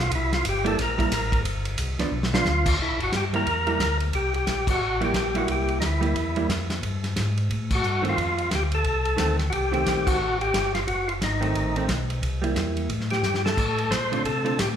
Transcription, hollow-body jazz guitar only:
0.65 G3 A#3 E4
0.98 G3 A#3 E4
1.99 F3 B3 D4
2.33 F3 B3 D4
3.33 G3 A#3 E4
3.67 G3 A#3 E4
5.01 G3 A#3 E4
5.34 G3 A#3 E4
6.01 G3 A#3 E4
6.37 G3 A#3 E4
8.02 D#3 A3 C4
9.17 D#3 A3 C4
9.72 D#3 A3 C4
11.41 D#3 A3 C4
11.76 D#3 A3 C4
12.42 G3 A#3 E4
14.12 D3 A3 C4 F4
14.45 D3 A3 C4 F4

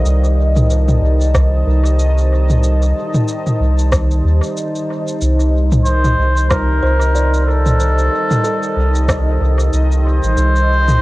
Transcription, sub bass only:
0.05 C2
1.02 C2
1.67 C2
3.60 C2
4.24 D#2
5.21 C2
6.18 C2
6.82 C2
8.76 C2
9.41 C2
9.73 C2
10.23 A1
10.37 C2

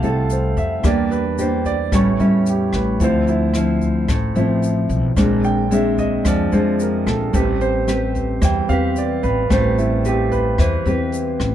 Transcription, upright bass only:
0.03 C2
0.57 F2
0.84 E2
1.92 A1
2.19 E2
2.73 A1
3.00 D2
4.08 A1
4.35 A1
4.89 B1
5.17 A#1
6.25 F2
6.52 F2
7.06 A#1
7.34 A1
8.42 E2
8.69 E2
9.23 A1
9.50 A1
10.58 E2
10.86 E2
11.40 A1

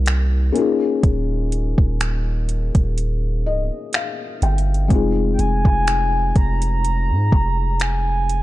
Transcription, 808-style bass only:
Already playing: C2
1.03 D#1
1.78 D#1
2.75 D#1
3.45 C#1
4.42 G1
4.90 F1
5.39 F1
5.65 F1
6.36 F1
7.10 G#2
7.32 F1

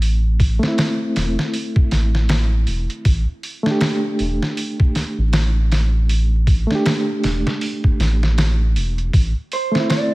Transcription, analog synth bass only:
Already playing: A1
1.17 E1
1.93 A1
2.67 E1
3.05 A1
4.20 E1
5.18 A1
7.24 E1
7.99 A1
8.75 E1
9.14 A1

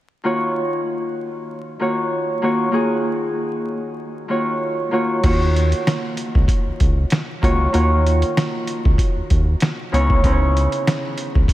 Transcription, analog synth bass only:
5.24 D#2
6.35 C#2
6.66 C#2
6.81 C#2
7.43 C#2
7.74 D#2
8.86 C#2
9.17 D#2
9.31 D#2
9.93 C#2
11.36 C#2

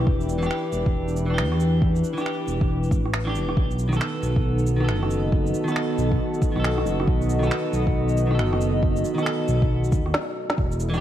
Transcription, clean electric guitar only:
Already playing: E3 D4 G4
0.38 E3
0.42 D4 G4
1.26 E3 D4
1.34 G4
2.13 E3 D4
2.21 G4
3.25 E3 D4
3.29 G4
3.89 D#3
3.93 B3 A4
4.76 D#3 B3
4.84 A4
5.64 D#3 B3
5.72 A4
6.52 D#3 B3
6.60 A4
7.39 D#3 B3
7.47 A4
8.27 D#3 B3
8.35 A4
9.15 D#3
9.19 B3
9.23 A4
10.90 E3
10.94 D4

